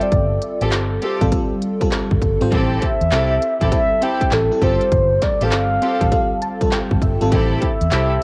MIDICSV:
0, 0, Header, 1, 6, 480
1, 0, Start_track
1, 0, Tempo, 600000
1, 95, Time_signature, 4, 2, 24, 8
1, 6586, End_track
2, 0, Start_track
2, 0, Title_t, "Soft synth lead"
2, 0, Program_c, 0, 80
2, 19, Note_on_c, 0, 74, 88
2, 494, Note_off_c, 0, 74, 0
2, 2267, Note_on_c, 0, 76, 104
2, 2949, Note_off_c, 0, 76, 0
2, 2985, Note_on_c, 0, 76, 114
2, 3224, Note_on_c, 0, 79, 101
2, 3236, Note_off_c, 0, 76, 0
2, 3465, Note_on_c, 0, 69, 91
2, 3477, Note_off_c, 0, 79, 0
2, 3706, Note_on_c, 0, 72, 108
2, 3718, Note_off_c, 0, 69, 0
2, 4186, Note_on_c, 0, 74, 91
2, 4198, Note_off_c, 0, 72, 0
2, 4339, Note_on_c, 0, 77, 110
2, 4351, Note_off_c, 0, 74, 0
2, 5620, Note_off_c, 0, 77, 0
2, 6105, Note_on_c, 0, 76, 96
2, 6586, Note_off_c, 0, 76, 0
2, 6586, End_track
3, 0, Start_track
3, 0, Title_t, "String section"
3, 0, Program_c, 1, 48
3, 487, Note_on_c, 1, 60, 72
3, 488, Note_on_c, 1, 65, 64
3, 490, Note_on_c, 1, 67, 68
3, 491, Note_on_c, 1, 69, 86
3, 558, Note_off_c, 1, 60, 0
3, 558, Note_off_c, 1, 65, 0
3, 559, Note_off_c, 1, 67, 0
3, 560, Note_off_c, 1, 69, 0
3, 812, Note_on_c, 1, 60, 71
3, 814, Note_on_c, 1, 65, 66
3, 816, Note_on_c, 1, 67, 66
3, 817, Note_on_c, 1, 69, 80
3, 939, Note_off_c, 1, 60, 0
3, 940, Note_off_c, 1, 65, 0
3, 941, Note_off_c, 1, 67, 0
3, 941, Note_off_c, 1, 69, 0
3, 2012, Note_on_c, 1, 60, 92
3, 2014, Note_on_c, 1, 64, 73
3, 2016, Note_on_c, 1, 67, 77
3, 2017, Note_on_c, 1, 69, 99
3, 2240, Note_off_c, 1, 60, 0
3, 2240, Note_off_c, 1, 64, 0
3, 2242, Note_off_c, 1, 67, 0
3, 2242, Note_off_c, 1, 69, 0
3, 2492, Note_on_c, 1, 60, 77
3, 2494, Note_on_c, 1, 64, 71
3, 2495, Note_on_c, 1, 67, 72
3, 2496, Note_on_c, 1, 69, 83
3, 2619, Note_off_c, 1, 60, 0
3, 2620, Note_off_c, 1, 64, 0
3, 2620, Note_off_c, 1, 67, 0
3, 2621, Note_off_c, 1, 69, 0
3, 2886, Note_on_c, 1, 60, 74
3, 2888, Note_on_c, 1, 64, 67
3, 2889, Note_on_c, 1, 67, 66
3, 2891, Note_on_c, 1, 69, 83
3, 2957, Note_off_c, 1, 60, 0
3, 2958, Note_off_c, 1, 64, 0
3, 2959, Note_off_c, 1, 67, 0
3, 2960, Note_off_c, 1, 69, 0
3, 3211, Note_on_c, 1, 60, 82
3, 3213, Note_on_c, 1, 64, 68
3, 3214, Note_on_c, 1, 67, 71
3, 3216, Note_on_c, 1, 69, 85
3, 3338, Note_off_c, 1, 60, 0
3, 3339, Note_off_c, 1, 64, 0
3, 3340, Note_off_c, 1, 67, 0
3, 3341, Note_off_c, 1, 69, 0
3, 3691, Note_on_c, 1, 60, 71
3, 3693, Note_on_c, 1, 65, 66
3, 3694, Note_on_c, 1, 67, 64
3, 3696, Note_on_c, 1, 69, 84
3, 3818, Note_off_c, 1, 60, 0
3, 3819, Note_off_c, 1, 65, 0
3, 3820, Note_off_c, 1, 67, 0
3, 3821, Note_off_c, 1, 69, 0
3, 4324, Note_on_c, 1, 60, 74
3, 4326, Note_on_c, 1, 65, 69
3, 4328, Note_on_c, 1, 67, 67
3, 4330, Note_on_c, 1, 69, 83
3, 4396, Note_off_c, 1, 60, 0
3, 4397, Note_off_c, 1, 65, 0
3, 4398, Note_off_c, 1, 67, 0
3, 4399, Note_off_c, 1, 69, 0
3, 4650, Note_on_c, 1, 60, 68
3, 4652, Note_on_c, 1, 65, 69
3, 4654, Note_on_c, 1, 67, 67
3, 4655, Note_on_c, 1, 69, 80
3, 4778, Note_off_c, 1, 60, 0
3, 4779, Note_off_c, 1, 65, 0
3, 4780, Note_off_c, 1, 67, 0
3, 4780, Note_off_c, 1, 69, 0
3, 5852, Note_on_c, 1, 60, 83
3, 5854, Note_on_c, 1, 64, 84
3, 5855, Note_on_c, 1, 67, 77
3, 5857, Note_on_c, 1, 69, 88
3, 6080, Note_off_c, 1, 60, 0
3, 6081, Note_off_c, 1, 64, 0
3, 6081, Note_off_c, 1, 67, 0
3, 6082, Note_off_c, 1, 69, 0
3, 6331, Note_on_c, 1, 60, 74
3, 6333, Note_on_c, 1, 64, 72
3, 6334, Note_on_c, 1, 67, 67
3, 6336, Note_on_c, 1, 69, 81
3, 6458, Note_off_c, 1, 60, 0
3, 6459, Note_off_c, 1, 64, 0
3, 6460, Note_off_c, 1, 67, 0
3, 6461, Note_off_c, 1, 69, 0
3, 6586, End_track
4, 0, Start_track
4, 0, Title_t, "FM electric piano"
4, 0, Program_c, 2, 5
4, 0, Note_on_c, 2, 55, 69
4, 0, Note_on_c, 2, 60, 62
4, 0, Note_on_c, 2, 65, 63
4, 0, Note_on_c, 2, 69, 78
4, 26, Control_c, 2, 64, 127
4, 743, Note_off_c, 2, 55, 0
4, 745, Note_off_c, 2, 60, 0
4, 747, Note_off_c, 2, 65, 0
4, 748, Note_off_c, 2, 69, 0
4, 968, Note_on_c, 2, 55, 89
4, 971, Note_on_c, 2, 60, 85
4, 973, Note_on_c, 2, 65, 80
4, 976, Note_on_c, 2, 69, 100
4, 1042, Note_off_c, 2, 55, 0
4, 1044, Note_off_c, 2, 60, 0
4, 1048, Note_off_c, 2, 65, 0
4, 1050, Note_off_c, 2, 69, 0
4, 1052, Note_on_c, 2, 55, 81
4, 1054, Note_on_c, 2, 60, 70
4, 1057, Note_on_c, 2, 65, 72
4, 1060, Note_on_c, 2, 69, 90
4, 1401, Note_off_c, 2, 55, 0
4, 1402, Note_off_c, 2, 60, 0
4, 1403, Note_off_c, 2, 65, 0
4, 1405, Note_off_c, 2, 69, 0
4, 1445, Note_on_c, 2, 55, 83
4, 1449, Note_on_c, 2, 60, 75
4, 1453, Note_on_c, 2, 65, 73
4, 1456, Note_on_c, 2, 69, 95
4, 1865, Note_off_c, 2, 55, 0
4, 1866, Note_off_c, 2, 60, 0
4, 1868, Note_off_c, 2, 65, 0
4, 1870, Note_off_c, 2, 69, 0
4, 1926, Note_on_c, 2, 55, 91
4, 1930, Note_on_c, 2, 60, 90
4, 1934, Note_on_c, 2, 65, 85
4, 1936, Note_on_c, 2, 72, 102
4, 2013, Note_off_c, 2, 55, 0
4, 2015, Note_off_c, 2, 60, 0
4, 2017, Note_off_c, 2, 65, 0
4, 2018, Note_off_c, 2, 72, 0
4, 2027, Control_c, 2, 64, 0
4, 2164, Control_c, 2, 64, 127
4, 2972, Note_on_c, 2, 55, 80
4, 2975, Note_on_c, 2, 60, 74
4, 2978, Note_on_c, 2, 64, 72
4, 2982, Note_on_c, 2, 69, 82
4, 3530, Note_off_c, 2, 55, 0
4, 3531, Note_off_c, 2, 60, 0
4, 3533, Note_off_c, 2, 64, 0
4, 3534, Note_off_c, 2, 69, 0
4, 3607, Note_on_c, 2, 55, 69
4, 3610, Note_on_c, 2, 60, 64
4, 3613, Note_on_c, 2, 64, 66
4, 3616, Note_on_c, 2, 69, 82
4, 3682, Note_off_c, 2, 55, 0
4, 3685, Note_off_c, 2, 60, 0
4, 3692, Note_off_c, 2, 69, 0
4, 3692, Note_on_c, 2, 55, 73
4, 3694, Note_on_c, 2, 60, 63
4, 3697, Note_off_c, 2, 64, 0
4, 3698, Note_on_c, 2, 65, 68
4, 3701, Note_on_c, 2, 69, 84
4, 3707, Control_c, 2, 64, 0
4, 3829, Control_c, 2, 64, 127
4, 4584, Note_off_c, 2, 55, 0
4, 4585, Note_off_c, 2, 60, 0
4, 4587, Note_off_c, 2, 65, 0
4, 4588, Note_off_c, 2, 69, 0
4, 4805, Note_on_c, 2, 55, 73
4, 4808, Note_on_c, 2, 60, 63
4, 4812, Note_on_c, 2, 65, 65
4, 4815, Note_on_c, 2, 69, 76
4, 4884, Note_off_c, 2, 55, 0
4, 4886, Note_off_c, 2, 60, 0
4, 4888, Note_off_c, 2, 65, 0
4, 4889, Note_off_c, 2, 69, 0
4, 4892, Note_on_c, 2, 55, 82
4, 4894, Note_on_c, 2, 60, 70
4, 4897, Note_on_c, 2, 65, 73
4, 4901, Note_on_c, 2, 69, 84
4, 5135, Note_on_c, 2, 81, 69
4, 5241, Note_off_c, 2, 55, 0
4, 5242, Note_off_c, 2, 60, 0
4, 5243, Note_off_c, 2, 65, 0
4, 5245, Note_off_c, 2, 69, 0
4, 5286, Note_on_c, 2, 55, 83
4, 5289, Note_on_c, 2, 60, 75
4, 5292, Note_on_c, 2, 65, 76
4, 5296, Note_on_c, 2, 69, 90
4, 5358, Note_off_c, 2, 81, 0
4, 5377, Note_on_c, 2, 79, 71
4, 5599, Note_off_c, 2, 79, 0
4, 5618, Note_on_c, 2, 76, 63
4, 5705, Note_off_c, 2, 55, 0
4, 5706, Note_off_c, 2, 60, 0
4, 5708, Note_off_c, 2, 65, 0
4, 5710, Note_off_c, 2, 69, 0
4, 5767, Note_on_c, 2, 55, 89
4, 5771, Note_on_c, 2, 60, 85
4, 5774, Note_on_c, 2, 65, 77
4, 5777, Note_on_c, 2, 69, 102
4, 5840, Note_off_c, 2, 76, 0
4, 5854, Note_off_c, 2, 55, 0
4, 5856, Note_off_c, 2, 60, 0
4, 5857, Note_off_c, 2, 65, 0
4, 5859, Note_off_c, 2, 69, 0
4, 5867, Control_c, 2, 64, 0
4, 6013, Control_c, 2, 64, 127
4, 6586, End_track
5, 0, Start_track
5, 0, Title_t, "Fingered electric bass"
5, 0, Program_c, 3, 33
5, 95, Note_on_c, 3, 31, 108
5, 298, Note_off_c, 3, 31, 0
5, 490, Note_on_c, 3, 33, 78
5, 577, Note_off_c, 3, 33, 0
5, 577, Note_on_c, 3, 31, 102
5, 779, Note_off_c, 3, 31, 0
5, 969, Note_on_c, 3, 33, 80
5, 1042, Note_off_c, 3, 33, 0
5, 1689, Note_on_c, 3, 31, 87
5, 1762, Note_off_c, 3, 31, 0
5, 1774, Note_on_c, 3, 31, 82
5, 1905, Note_off_c, 3, 31, 0
5, 1932, Note_on_c, 3, 32, 88
5, 2003, Note_off_c, 3, 32, 0
5, 2016, Note_on_c, 3, 33, 105
5, 2218, Note_off_c, 3, 33, 0
5, 2410, Note_on_c, 3, 40, 86
5, 2482, Note_off_c, 3, 40, 0
5, 2496, Note_on_c, 3, 36, 107
5, 2698, Note_off_c, 3, 36, 0
5, 2890, Note_on_c, 3, 33, 84
5, 2962, Note_off_c, 3, 33, 0
5, 3454, Note_on_c, 3, 33, 83
5, 3585, Note_off_c, 3, 33, 0
5, 3693, Note_on_c, 3, 31, 90
5, 3824, Note_off_c, 3, 31, 0
5, 3935, Note_on_c, 3, 31, 117
5, 4137, Note_off_c, 3, 31, 0
5, 4330, Note_on_c, 3, 33, 88
5, 4415, Note_off_c, 3, 33, 0
5, 4415, Note_on_c, 3, 31, 100
5, 4618, Note_off_c, 3, 31, 0
5, 4808, Note_on_c, 3, 33, 83
5, 4881, Note_off_c, 3, 33, 0
5, 5530, Note_on_c, 3, 31, 88
5, 5602, Note_off_c, 3, 31, 0
5, 5614, Note_on_c, 3, 31, 83
5, 5745, Note_off_c, 3, 31, 0
5, 5771, Note_on_c, 3, 32, 86
5, 5843, Note_off_c, 3, 32, 0
5, 5856, Note_on_c, 3, 33, 105
5, 6058, Note_off_c, 3, 33, 0
5, 6251, Note_on_c, 3, 40, 86
5, 6322, Note_off_c, 3, 40, 0
5, 6335, Note_on_c, 3, 36, 104
5, 6538, Note_off_c, 3, 36, 0
5, 6586, End_track
6, 0, Start_track
6, 0, Title_t, "Drums"
6, 9, Note_on_c, 9, 42, 49
6, 89, Note_off_c, 9, 42, 0
6, 94, Note_on_c, 9, 42, 63
6, 95, Note_on_c, 9, 36, 118
6, 174, Note_off_c, 9, 42, 0
6, 175, Note_off_c, 9, 36, 0
6, 334, Note_on_c, 9, 42, 78
6, 414, Note_off_c, 9, 42, 0
6, 489, Note_on_c, 9, 42, 62
6, 569, Note_off_c, 9, 42, 0
6, 573, Note_on_c, 9, 42, 71
6, 575, Note_on_c, 9, 39, 82
6, 576, Note_on_c, 9, 38, 110
6, 653, Note_off_c, 9, 42, 0
6, 655, Note_off_c, 9, 39, 0
6, 656, Note_off_c, 9, 38, 0
6, 815, Note_on_c, 9, 42, 68
6, 895, Note_off_c, 9, 42, 0
6, 969, Note_on_c, 9, 36, 95
6, 970, Note_on_c, 9, 42, 60
6, 1049, Note_off_c, 9, 36, 0
6, 1050, Note_off_c, 9, 42, 0
6, 1054, Note_on_c, 9, 42, 81
6, 1055, Note_on_c, 9, 36, 99
6, 1134, Note_off_c, 9, 42, 0
6, 1135, Note_off_c, 9, 36, 0
6, 1296, Note_on_c, 9, 42, 77
6, 1376, Note_off_c, 9, 42, 0
6, 1449, Note_on_c, 9, 36, 98
6, 1451, Note_on_c, 9, 42, 53
6, 1529, Note_off_c, 9, 36, 0
6, 1531, Note_off_c, 9, 42, 0
6, 1535, Note_on_c, 9, 39, 87
6, 1536, Note_on_c, 9, 38, 113
6, 1536, Note_on_c, 9, 42, 78
6, 1615, Note_off_c, 9, 39, 0
6, 1616, Note_off_c, 9, 38, 0
6, 1616, Note_off_c, 9, 42, 0
6, 1689, Note_on_c, 9, 36, 85
6, 1769, Note_off_c, 9, 36, 0
6, 1774, Note_on_c, 9, 36, 85
6, 1777, Note_on_c, 9, 42, 56
6, 1854, Note_off_c, 9, 36, 0
6, 1857, Note_off_c, 9, 42, 0
6, 1929, Note_on_c, 9, 42, 46
6, 2009, Note_off_c, 9, 42, 0
6, 2015, Note_on_c, 9, 36, 110
6, 2015, Note_on_c, 9, 42, 64
6, 2095, Note_off_c, 9, 36, 0
6, 2095, Note_off_c, 9, 42, 0
6, 2255, Note_on_c, 9, 42, 74
6, 2257, Note_on_c, 9, 36, 86
6, 2335, Note_off_c, 9, 42, 0
6, 2337, Note_off_c, 9, 36, 0
6, 2410, Note_on_c, 9, 42, 60
6, 2490, Note_off_c, 9, 42, 0
6, 2494, Note_on_c, 9, 42, 73
6, 2495, Note_on_c, 9, 39, 91
6, 2496, Note_on_c, 9, 38, 106
6, 2574, Note_off_c, 9, 42, 0
6, 2575, Note_off_c, 9, 39, 0
6, 2576, Note_off_c, 9, 38, 0
6, 2736, Note_on_c, 9, 42, 76
6, 2816, Note_off_c, 9, 42, 0
6, 2889, Note_on_c, 9, 36, 97
6, 2889, Note_on_c, 9, 42, 57
6, 2969, Note_off_c, 9, 36, 0
6, 2969, Note_off_c, 9, 42, 0
6, 2974, Note_on_c, 9, 36, 95
6, 2974, Note_on_c, 9, 42, 75
6, 3054, Note_off_c, 9, 36, 0
6, 3054, Note_off_c, 9, 42, 0
6, 3214, Note_on_c, 9, 42, 82
6, 3294, Note_off_c, 9, 42, 0
6, 3368, Note_on_c, 9, 36, 90
6, 3369, Note_on_c, 9, 42, 52
6, 3448, Note_off_c, 9, 36, 0
6, 3449, Note_off_c, 9, 42, 0
6, 3453, Note_on_c, 9, 39, 83
6, 3454, Note_on_c, 9, 38, 115
6, 3454, Note_on_c, 9, 42, 79
6, 3533, Note_off_c, 9, 39, 0
6, 3534, Note_off_c, 9, 38, 0
6, 3534, Note_off_c, 9, 42, 0
6, 3693, Note_on_c, 9, 36, 88
6, 3696, Note_on_c, 9, 42, 52
6, 3773, Note_off_c, 9, 36, 0
6, 3776, Note_off_c, 9, 42, 0
6, 3848, Note_on_c, 9, 42, 46
6, 3928, Note_off_c, 9, 42, 0
6, 3933, Note_on_c, 9, 42, 64
6, 3934, Note_on_c, 9, 36, 117
6, 4013, Note_off_c, 9, 42, 0
6, 4014, Note_off_c, 9, 36, 0
6, 4174, Note_on_c, 9, 42, 72
6, 4176, Note_on_c, 9, 36, 83
6, 4176, Note_on_c, 9, 38, 58
6, 4254, Note_off_c, 9, 42, 0
6, 4256, Note_off_c, 9, 36, 0
6, 4256, Note_off_c, 9, 38, 0
6, 4329, Note_on_c, 9, 42, 65
6, 4409, Note_off_c, 9, 42, 0
6, 4413, Note_on_c, 9, 42, 75
6, 4414, Note_on_c, 9, 39, 90
6, 4415, Note_on_c, 9, 38, 110
6, 4493, Note_off_c, 9, 42, 0
6, 4494, Note_off_c, 9, 39, 0
6, 4495, Note_off_c, 9, 38, 0
6, 4655, Note_on_c, 9, 42, 67
6, 4735, Note_off_c, 9, 42, 0
6, 4808, Note_on_c, 9, 36, 104
6, 4809, Note_on_c, 9, 42, 59
6, 4888, Note_off_c, 9, 36, 0
6, 4889, Note_off_c, 9, 42, 0
6, 4894, Note_on_c, 9, 36, 97
6, 4894, Note_on_c, 9, 42, 79
6, 4974, Note_off_c, 9, 36, 0
6, 4974, Note_off_c, 9, 42, 0
6, 5134, Note_on_c, 9, 42, 82
6, 5214, Note_off_c, 9, 42, 0
6, 5288, Note_on_c, 9, 36, 96
6, 5290, Note_on_c, 9, 42, 56
6, 5368, Note_off_c, 9, 36, 0
6, 5370, Note_off_c, 9, 42, 0
6, 5374, Note_on_c, 9, 39, 85
6, 5375, Note_on_c, 9, 38, 111
6, 5376, Note_on_c, 9, 42, 76
6, 5454, Note_off_c, 9, 39, 0
6, 5455, Note_off_c, 9, 38, 0
6, 5456, Note_off_c, 9, 42, 0
6, 5528, Note_on_c, 9, 36, 83
6, 5608, Note_off_c, 9, 36, 0
6, 5613, Note_on_c, 9, 36, 89
6, 5617, Note_on_c, 9, 42, 53
6, 5693, Note_off_c, 9, 36, 0
6, 5697, Note_off_c, 9, 42, 0
6, 5768, Note_on_c, 9, 42, 49
6, 5848, Note_off_c, 9, 42, 0
6, 5854, Note_on_c, 9, 42, 69
6, 5855, Note_on_c, 9, 36, 114
6, 5934, Note_off_c, 9, 42, 0
6, 5935, Note_off_c, 9, 36, 0
6, 6093, Note_on_c, 9, 42, 72
6, 6097, Note_on_c, 9, 36, 89
6, 6173, Note_off_c, 9, 42, 0
6, 6177, Note_off_c, 9, 36, 0
6, 6248, Note_on_c, 9, 42, 59
6, 6328, Note_off_c, 9, 42, 0
6, 6332, Note_on_c, 9, 42, 72
6, 6333, Note_on_c, 9, 39, 85
6, 6334, Note_on_c, 9, 38, 109
6, 6412, Note_off_c, 9, 42, 0
6, 6413, Note_off_c, 9, 39, 0
6, 6414, Note_off_c, 9, 38, 0
6, 6586, End_track
0, 0, End_of_file